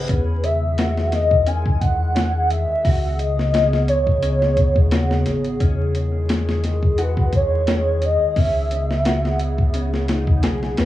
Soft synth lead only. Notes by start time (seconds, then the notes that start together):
0.10 B4
0.43 E5
1.13 D#5
1.47 G#5
1.80 F#5
2.49 E5
3.19 D#5
3.88 C#5
6.65 G#4
7.01 B4
7.35 C#5
8.05 D#5
8.38 E5
10.79 B4